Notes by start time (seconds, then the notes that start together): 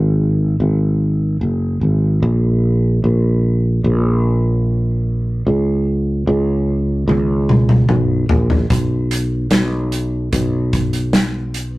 Already playing: G#1
0.60 G#1
1.41 F#1
1.81 G#1
2.23 A#1
3.04 A#1
3.84 A#1
5.47 C#2
6.27 C#2
7.08 C#2, high tom
7.49 mid tom
7.69 mid tom
7.89 B1, mid tom
8.29 A#1, floor tom
8.50 floor tom
8.70 B1, kick, closed hi-hat
9.11 closed hi-hat
9.51 B1, snare, closed hi-hat
9.92 closed hi-hat
10.33 B1, kick, closed hi-hat
10.73 kick, closed hi-hat
10.93 closed hi-hat
11.13 snare, closed hi-hat
11.54 closed hi-hat